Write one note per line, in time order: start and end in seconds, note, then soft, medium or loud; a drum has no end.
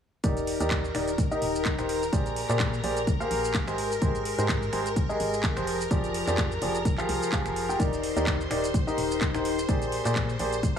0.24 0.56 D#1 loud
0.24 0.57 D#3 medium
0.24 0.57 D#4 medium
0.24 0.57 G4 medium
0.24 7.81 A#4 medium
0.24 0.57 A#4 medium
0.24 0.57 D5 medium
0.24 7.81 A#5 medium
0.24 kick loud
0.24 closed hi-hat medium
0.24 shaker medium
0.37 closed hi-hat soft
0.37 shaker soft
0.47 open hi-hat loud
0.60 0.91 D#2 loud
0.60 0.82 D#3 medium
0.60 0.82 D#4 medium
0.60 0.82 G4 medium
0.60 0.82 A#4 medium
0.60 0.82 D5 loud
0.60 closed hi-hat medium
0.60 shaker medium
0.71 kick loud
0.71 clap loud
0.71 closed hi-hat medium
0.71 shaker medium
0.85 shaker soft
0.94 1.27 D#1 medium
0.94 1.09 D#3 medium
0.94 1.09 D#4 medium
0.94 1.09 G4 medium
0.94 1.09 A#4 medium
0.94 1.09 D5 medium
0.94 finger snap medium
0.94 open hi-hat loud
1.08 closed hi-hat medium
1.08 shaker medium
1.18 kick loud
1.18 closed hi-hat medium
1.18 shaker medium
1.31 1.75 D#3 medium
1.31 1.75 D#4 medium
1.31 1.75 G4 medium
1.31 1.75 A#4 medium
1.31 1.75 D#5 loud
1.31 shaker soft
1.42 1.74 D#1 loud
1.42 open hi-hat loud
1.55 shaker medium
1.65 kick loud
1.65 clap loud
1.65 closed hi-hat medium
1.65 shaker medium
1.78 2.09 D#1 medium
1.78 2.00 D#3 medium
1.78 2.00 D#4 medium
1.78 2.00 G4 medium
1.78 2.00 A#4 medium
1.78 2.00 C5 medium
1.78 finger snap medium
1.78 closed hi-hat soft
1.78 shaker soft
1.89 open hi-hat loud
2.03 shaker medium
2.13 2.45 A#1 loud
2.13 2.46 A#3 medium
2.13 2.46 G4 medium
2.13 2.46 G#4 medium
2.13 2.46 C5 medium
2.13 2.46 D5 medium
2.13 kick loud
2.13 closed hi-hat medium
2.13 shaker medium
2.26 closed hi-hat soft
2.26 shaker soft
2.36 open hi-hat loud
2.49 2.80 A#2 loud
2.49 2.71 A#3 medium
2.49 2.71 G4 medium
2.49 2.71 G#4 medium
2.49 2.71 C5 medium
2.49 2.71 D5 loud
2.49 clap soft
2.49 closed hi-hat medium
2.49 shaker medium
2.60 kick loud
2.60 clap loud
2.60 closed hi-hat medium
2.60 shaker medium
2.74 shaker soft
2.83 3.15 A#1 medium
2.83 2.98 A#3 medium
2.83 2.98 G4 medium
2.83 2.98 G#4 medium
2.83 2.98 C5 medium
2.83 2.98 D5 medium
2.83 open hi-hat loud
2.97 closed hi-hat medium
2.97 shaker medium
3.07 kick loud
3.07 closed hi-hat medium
3.07 shaker medium
3.20 3.64 A#3 loud
3.20 3.64 G4 medium
3.20 3.64 G#4 medium
3.20 3.64 C5 medium
3.20 3.64 F5 loud
3.20 shaker soft
3.31 3.63 A#1 loud
3.31 open hi-hat loud
3.44 shaker medium
3.54 kick loud
3.54 clap loud
3.54 closed hi-hat medium
3.54 shaker medium
3.67 3.98 G#1 medium
3.67 3.89 G#3 medium
3.67 3.90 G4 medium
3.67 3.89 G#4 medium
3.67 3.90 A#4 medium
3.67 3.90 C5 medium
3.67 finger snap medium
3.67 closed hi-hat soft
3.67 shaker soft
3.78 open hi-hat loud
3.92 shaker medium
4.02 4.34 G#1 loud
4.02 4.35 G#3 medium
4.02 4.35 G4 medium
4.02 4.35 G#4 medium
4.02 4.35 A#4 medium
4.02 4.35 C5 medium
4.02 kick loud
4.02 closed hi-hat medium
4.02 shaker medium
4.15 closed hi-hat soft
4.15 shaker soft
4.25 open hi-hat loud
4.38 4.69 G#2 loud
4.38 4.60 G#3 medium
4.38 4.60 G4 medium
4.38 4.60 G#4 medium
4.38 4.60 A#4 medium
4.38 4.60 C5 medium
4.38 closed hi-hat soft
4.38 shaker medium
4.49 kick loud
4.49 clap loud
4.49 closed hi-hat medium
4.49 shaker medium
4.63 shaker soft
4.73 5.05 G#1 medium
4.73 4.87 G#3 medium
4.73 4.87 G4 medium
4.73 4.87 G#4 medium
4.73 4.87 A#4 medium
4.73 4.87 C5 medium
4.73 finger snap medium
4.73 open hi-hat loud
4.86 closed hi-hat soft
4.86 shaker medium
4.96 kick loud
4.96 closed hi-hat medium
4.96 shaker medium
5.09 5.53 G#3 medium
5.09 5.53 G4 medium
5.09 5.53 G#4 medium
5.09 5.53 A#4 medium
5.09 5.53 D#5 loud
5.09 shaker soft
5.20 5.52 G#1 loud
5.20 open hi-hat loud
5.34 shaker medium
5.43 kick loud
5.43 clap loud
5.43 closed hi-hat medium
5.43 shaker medium
5.57 5.87 F1 medium
5.57 5.78 F3 medium
5.57 5.79 F4 medium
5.57 5.78 G4 medium
5.57 5.78 G#4 medium
5.57 5.78 C5 medium
5.57 finger snap medium
5.57 closed hi-hat soft
5.57 shaker soft
5.67 open hi-hat loud
5.81 shaker medium
5.91 6.23 F1 loud
5.91 6.24 F3 medium
5.91 6.24 F4 medium
5.91 6.24 G4 medium
5.91 6.24 G#4 medium
5.91 6.24 D5 medium
5.91 kick loud
5.91 closed hi-hat medium
5.91 shaker medium
6.04 closed hi-hat soft
6.04 shaker soft
6.14 open hi-hat loud
6.27 6.58 F2 loud
6.27 6.49 F3 medium
6.27 6.49 F4 medium
6.27 6.49 G4 medium
6.27 6.49 G#4 medium
6.27 6.49 D5 loud
6.27 clap soft
6.27 closed hi-hat soft
6.27 shaker medium
6.38 kick loud
6.38 clap loud
6.38 closed hi-hat medium
6.38 shaker medium
6.52 shaker soft
6.62 6.94 F1 medium
6.62 6.77 F3 medium
6.62 6.76 F4 medium
6.62 6.76 G4 medium
6.62 6.76 G#4 medium
6.62 6.77 D5 medium
6.62 open hi-hat loud
6.75 closed hi-hat soft
6.75 shaker medium
6.85 kick loud
6.85 closed hi-hat medium
6.85 shaker medium
6.98 7.30 F3 medium
6.98 7.30 F4 medium
6.98 7.30 G4 medium
6.98 7.30 G#4 medium
6.98 7.30 F5 loud
6.98 clap soft
6.98 shaker soft
7.09 7.19 C2 loud
7.09 open hi-hat loud
7.22 shaker medium
7.32 7.66 F3 medium
7.32 7.66 F4 medium
7.32 7.66 G4 medium
7.32 7.66 G#4 medium
7.32 7.66 F5 loud
7.32 kick loud
7.32 clap loud
7.32 closed hi-hat medium
7.32 shaker medium
7.45 7.76 F1 loud
7.45 finger snap medium
7.45 closed hi-hat soft
7.45 shaker soft
7.56 open hi-hat loud
7.69 7.78 F4 medium
7.69 7.78 G4 medium
7.69 7.78 G#4 medium
7.69 7.78 G5 medium
7.69 shaker medium
7.80 8.12 D#1 loud
7.80 8.13 D#3 medium
7.80 8.13 D#4 medium
7.80 8.13 G4 medium
7.80 8.13 A#4 medium
7.80 10.79 C5 medium
7.80 8.13 D5 medium
7.80 10.79 C6 medium
7.80 kick loud
7.80 closed hi-hat medium
7.80 shaker medium
7.93 closed hi-hat soft
7.93 shaker soft
8.03 open hi-hat loud
8.16 8.47 D#2 loud
8.16 8.38 D#3 medium
8.16 8.38 D#4 medium
8.16 8.38 G4 medium
8.16 8.38 A#4 medium
8.16 8.38 D5 loud
8.16 closed hi-hat soft
8.16 shaker medium
8.27 kick loud
8.27 clap loud
8.27 closed hi-hat medium
8.27 shaker medium
8.41 shaker soft
8.51 8.82 D#1 medium
8.51 8.65 D#3 medium
8.51 8.65 D#4 medium
8.51 8.65 G4 medium
8.51 8.65 A#4 medium
8.51 8.65 D5 medium
8.51 finger snap medium
8.51 open hi-hat loud
8.64 closed hi-hat soft
8.64 shaker medium
8.74 kick loud
8.74 closed hi-hat medium
8.74 shaker medium
8.87 9.31 D#3 medium
8.87 9.31 D#4 medium
8.87 9.31 G4 medium
8.87 9.31 A#4 medium
8.87 9.31 D#5 loud
8.87 shaker soft
8.98 9.30 D#1 loud
8.98 open hi-hat loud
9.11 shaker medium
9.21 kick loud
9.21 clap loud
9.21 closed hi-hat medium
9.21 shaker medium
9.34 9.65 D#1 medium
9.34 9.56 D#3 medium
9.34 9.56 D#4 medium
9.34 9.56 G4 medium
9.34 9.56 A#4 medium
9.34 9.56 C5 medium
9.34 finger snap medium
9.34 closed hi-hat soft
9.34 shaker soft
9.45 open hi-hat loud
9.59 shaker medium
9.69 10.01 A#1 loud
9.69 10.02 A#3 medium
9.69 10.02 G4 medium
9.69 10.02 G#4 medium
9.69 10.02 C5 medium
9.69 10.02 D5 medium
9.69 kick loud
9.69 closed hi-hat medium
9.69 shaker medium
9.82 closed hi-hat soft
9.82 shaker soft
9.92 open hi-hat loud
10.05 10.36 A#2 loud
10.05 10.27 A#3 medium
10.05 10.27 G4 medium
10.05 10.27 G#4 medium
10.05 10.27 C5 medium
10.05 10.27 D5 medium
10.05 clap soft
10.05 closed hi-hat medium
10.05 shaker medium
10.16 kick loud
10.16 clap loud
10.16 closed hi-hat medium
10.16 shaker medium
10.29 shaker soft
10.39 10.71 A#1 medium
10.39 10.54 A#3 medium
10.39 10.54 G4 medium
10.39 10.54 G#4 medium
10.39 10.54 C5 medium
10.39 10.54 D5 medium
10.39 open hi-hat loud
10.53 closed hi-hat soft
10.53 shaker medium
10.63 kick loud
10.63 closed hi-hat medium
10.63 shaker medium